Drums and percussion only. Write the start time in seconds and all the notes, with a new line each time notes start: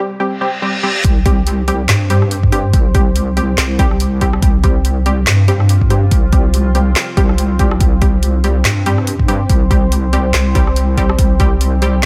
1.04 kick, closed hi-hat
1.26 kick, closed hi-hat
1.47 closed hi-hat
1.68 closed hi-hat
1.89 snare, clap, closed hi-hat
2.10 closed hi-hat
2.22 cross-stick
2.31 closed hi-hat
2.43 kick
2.52 closed hi-hat
2.73 kick, closed hi-hat
2.95 kick, closed hi-hat
3.16 closed hi-hat
3.37 closed hi-hat
3.58 snare, clap, closed hi-hat
3.79 kick, closed hi-hat
3.91 cross-stick
4.00 closed hi-hat
4.21 kick, closed hi-hat
4.33 cross-stick
4.42 kick, closed hi-hat
4.64 kick, closed hi-hat
4.85 closed hi-hat
5.06 closed hi-hat
5.27 snare, clap, closed hi-hat
5.48 closed hi-hat
5.60 cross-stick
5.69 closed hi-hat
5.81 kick
5.90 closed hi-hat
6.11 kick, closed hi-hat
6.33 kick, closed hi-hat
6.54 closed hi-hat
6.75 closed hi-hat
6.96 snare, clap, closed hi-hat
7.17 kick, closed hi-hat
7.29 cross-stick
7.38 closed hi-hat
7.59 kick, closed hi-hat
7.71 cross-stick
7.81 kick, closed hi-hat
8.02 kick, closed hi-hat
8.23 closed hi-hat
8.44 closed hi-hat
8.65 snare, clap, closed hi-hat
8.86 closed hi-hat
8.98 cross-stick
9.07 closed hi-hat
9.20 kick
9.28 closed hi-hat
9.50 kick, closed hi-hat
9.71 kick, closed hi-hat
9.92 closed hi-hat
10.13 closed hi-hat
10.34 snare, clap, closed hi-hat
10.55 kick, closed hi-hat
10.67 cross-stick
10.76 closed hi-hat
10.98 kick, closed hi-hat
11.10 cross-stick
11.19 kick, closed hi-hat
11.40 kick, closed hi-hat
11.61 closed hi-hat
11.82 closed hi-hat